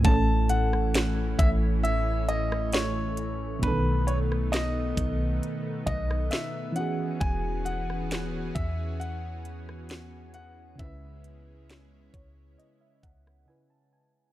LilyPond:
<<
  \new Staff \with { instrumentName = "Grand piano" } { \time 4/4 \key e \major \tempo 4 = 67 a''8 fis''4 e''8 e''8 dis''8 cis''4 | b'8 cis''8 dis''4. dis''8 e''8 fis''8 | gis''8 fis''4 e''8 fis''4. fis''8 | e''2. r4 | }
  \new Staff \with { instrumentName = "FM electric piano" } { \time 4/4 \key e \major << { r1 | r1 | r1 | r4. cis''8 dis''16 e''16 fis''8 gis''16 a''16 gis''8 | } \\ { <a, a cis' a'>1 | <b, dis b d' a'>2.~ <b, dis b d' a'>8 <e cis' fis' gis'>8~ | <e cis' fis' gis'>2.~ <e cis' fis' gis'>8 r8 | <cis cis' e' b'>2. <cis cis' e' b'>4 | } >> }
  \new Staff \with { instrumentName = "Analog synth pad" } { \time 4/4 \key e \major << { <e cis'>1 | <dis b>2.~ <dis b>8 <e cis' gis'>8~ | <e cis' gis'>1 | <cis gis e'>1 | } \\ { a1~ | a2.~ a8 fis'8~ | fis'1 | cis'1 | } >> }
  \new Staff \with { instrumentName = "808-style bass" } { \clef bass \time 4/4 \key e \major a,,4. a,,2~ a,,8 | b,,4. b,,8 r8 b,,8 r4 | e,,4. e,2~ e,8 | cis,4. cis,8 r8 cis,8 r4 | }
  \new DrumStaff \with { instrumentName = "Drums" } \drummode { \time 4/4 <hh bd>8 hh16 ss16 <hh sn>8 <hh bd>8 hh8 hh16 ss16 <hh sn>8 hh8 | <hh bd>8 hh16 ss16 <hh sn>8 <hh bd>8 hh8 <hh bd>16 ss16 <hh sn>8 hh8 | <hh bd>8 hh16 ss16 <hh sn>8 <hh bd>8 hh8 hh16 ss16 <hh sn>8 hh8 | <hh bd>8 hh8 <hh sn>8 <hh bd>8 hh8 <hh bd>16 ss16 r4 | }
>>